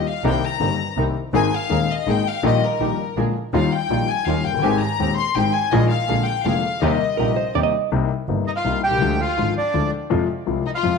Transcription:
0.07 F5
0.24 C2 C3 D#3 A#3 C4 D#4 G4 A#4 G5
0.43 A#5
0.60 G1 G2 D#3 A#3 C4 D#4 G4 A#4
0.97 C2 C3 D#3 A#3 C4 D#4 G4 A#4
1.33 G#1 G#2 D#3 G#3 A#3 D#4 G#4 G#5
1.54 F5
1.69 D#1 D#2 D#3 G#3 A#3 D#4 G#4
1.90 D#5
2.06 G#1 G#2 D#3 G#3 A#3 D#4 G#4 G5
2.28 F5
2.43 A#1 A#2 D#3 G3 A#3 D#4 G4 D#5
2.64 A#4
2.80 A#1 A#2 D#3 G3 A#3 D#4 G4
3.16 A#1 A#2 D3 G#3 A#3 D4 F4 G#4
3.53 D#2 D#3 G3 A#3 D#4 F4 F5
3.71 G5
3.90 A#1 A#2 D#3 G3 A#3 D#4 F4
4.08 G#5
4.26 D#2 D#3 G3 A#3 D#4 F4 F5
4.44 F#1 G5
4.50 F1
4.54 F#1
4.59 G1 G#1 G#5
4.63 G#1 G#2 D#3 G#3 C4 G4
4.79 A#5
5.00 D#1 D#2 D#3 G#3 C4 G4
5.16 C6
5.35 G#1 G#2 D#3 G#3 C4 G4 G5
5.52 G#5
5.70 A#1 A#2 D#3 G#3 A#3 D#4 F4 G#4 D#5
5.88 F5
6.09 A#1 A#2 D3 G#3 A#3 D4 F4 G#4
6.25 G5
6.44 F1 F2 D3 G#3 A#3 D4 F4 G#4 F5
6.81 D#2 C3 D#3 G3 A#3 C4 D#4 G4 D#5
7.17 A#1 A#2 C3 G3 A#3 C4 D#4 G4 A#4
7.36 C5
7.55 D#2 C3 D#3 G3 A#3 C4 D#4 G4 D5
7.63 D#5
7.92 C2 C3 G3 A#3 D#4
8.28 G1 G2 C3 G3 A#3 D#4
8.47 D#4 D#5
8.55 F4 F5
8.64 C2 C3 G3 A#3 D#4
8.83 B1 C2 G4 G5
8.91 C2
8.97 C#2 F3
9.01 D2 D3 G#3 F4
9.21 F4 F5
9.37 G#1 G#2 D3 F3 G#3 F4
9.57 D4 D5
9.74 D2 D3 F3 G#3 F4
10.10 F2 C3 F3 G#3 F4
10.46 C2 C3 F3 G#3 F4
10.66 D#4 D#5
10.75 F4 F5
10.83 F2 C3 F3 G#3 F4

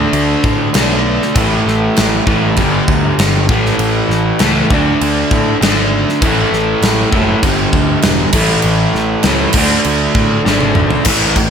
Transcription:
Already playing: D3 A3 D4
0.13 D2, crash
0.44 A2, kick
0.74 B1 D3 A3 D4, snare, crash
1.22 snare
1.35 A1 A2 E3 A3, kick, crash
1.66 A1, snare
1.97 A1, snare, crash
2.27 A1 A2 E3 A3, kick
2.56 G1 G2 D3 G3, kick, crash
2.88 D2, kick
3.18 G1, snare, crash
3.49 A1 A2 E3 A3, kick
3.66 snare
3.78 A1, crash
4.09 A1, snare
4.39 C#2 A2 E3 A3, snare, crash
4.70 D2 D3 A3 D4, kick
5.01 D2, crash
5.31 A2, kick
5.61 G#1 D3 A3 D4, snare, crash
6.09 snare
6.22 A1 A2 E3 A3, kick, crash
6.52 A1, snare
6.82 A1, snare, crash
7.11 F#1 A2 E3 A3, kick
7.42 G1 G2 D3 G3, kick, crash
7.73 D2, kick
8.02 E1, snare, crash
8.32 A1 A2 E3 A3, kick, crash
8.49 snare
8.62 A1, crash
8.94 A1, snare
9.23 C#2 A2 E3, snare, crash
9.27 A3
9.53 D2 D3 A3, kick, crash
9.58 D4
9.84 D2, crash
10.15 A2, kick
10.46 G#1 D3 A3 D4, snare
10.61 high tom
10.75 mid tom
10.90 floor tom
11.05 A1 A2 E3 A3, kick, crash
11.36 A1 A2 E3, kick, crash

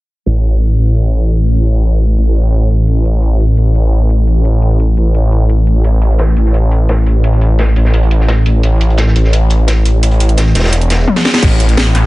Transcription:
0.26 A1, closed hi-hat
0.44 closed hi-hat
0.61 closed hi-hat
0.79 A1, closed hi-hat
0.96 closed hi-hat
1.13 closed hi-hat
1.31 closed hi-hat
1.48 closed hi-hat
1.66 closed hi-hat
1.83 closed hi-hat
2.01 closed hi-hat
2.18 A1, closed hi-hat
2.35 closed hi-hat
2.53 closed hi-hat
2.70 A1, closed hi-hat
2.88 A1, closed hi-hat
3.05 A1, closed hi-hat
3.23 closed hi-hat
3.40 closed hi-hat
3.58 A1, closed hi-hat
3.75 closed hi-hat
3.93 closed hi-hat
4.10 closed hi-hat
4.27 closed hi-hat
4.45 closed hi-hat
4.62 closed hi-hat
4.71 closed hi-hat
4.80 closed hi-hat
4.97 A1, closed hi-hat
5.15 closed hi-hat
5.32 closed hi-hat
5.50 closed hi-hat
5.67 closed hi-hat
5.84 A1, closed hi-hat
6.02 closed hi-hat
6.11 closed hi-hat
6.19 snare, closed hi-hat
6.28 snare
6.37 A1, closed hi-hat
6.46 snare
6.54 closed hi-hat
6.72 closed hi-hat
6.89 snare, closed hi-hat
7.06 closed hi-hat
7.24 closed hi-hat
7.33 closed hi-hat
7.41 closed hi-hat
7.59 snare, closed hi-hat
7.67 snare
7.76 A1, closed hi-hat
7.85 snare
7.94 closed hi-hat
8.03 closed hi-hat
8.11 closed hi-hat
8.20 snare
8.28 A1, snare, closed hi-hat
8.46 A1, closed hi-hat
8.63 A1, closed hi-hat
8.81 closed hi-hat
8.90 closed hi-hat
8.98 snare, closed hi-hat
9.08 snare
9.16 A1, closed hi-hat
9.24 snare
9.33 closed hi-hat
9.50 closed hi-hat
9.68 snare, closed hi-hat
9.85 closed hi-hat
10.03 closed hi-hat
10.11 closed hi-hat
10.20 closed hi-hat
10.29 closed hi-hat
10.37 snare, closed hi-hat
10.46 snare
10.55 E1, snare, closed hi-hat
10.60 snare, closed hi-hat
10.64 snare, closed hi-hat
10.68 snare, closed hi-hat
10.73 closed hi-hat
10.81 closed hi-hat
10.90 snare, closed hi-hat
10.99 snare
11.08 high tom
11.16 snare
11.25 snare
11.34 snare
11.42 A1, kick, closed hi-hat, crash
11.60 closed hi-hat
11.69 closed hi-hat
11.77 snare, closed hi-hat
11.86 snare
11.95 A1, snare, closed hi-hat

